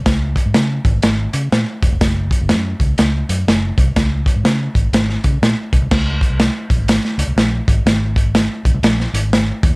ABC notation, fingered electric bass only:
X:1
M:4/4
L:1/16
Q:"Swing" 1/4=123
K:Gblyd
V:1 name="Fingered electric bass" clef=bass
D,,3 A,, D,2 A,,,2 A,,,2 D,2 B,, z _F,,, =F,,, | G,,,3 G,,, G,,2 D,,2 D,,2 G,,2 G,,,2 C,,2 | D,,3 A,, D,2 A,,,2 A,,,2 D,2 B,, z _C,, =C,, | D,,3 C,,2 z B,,, A,,,2 z D,, C,, B,,,2 A,,,2 |
A,,,4- A,,, z B,,, C,, B,,,2 A,,,4 E,,2 |]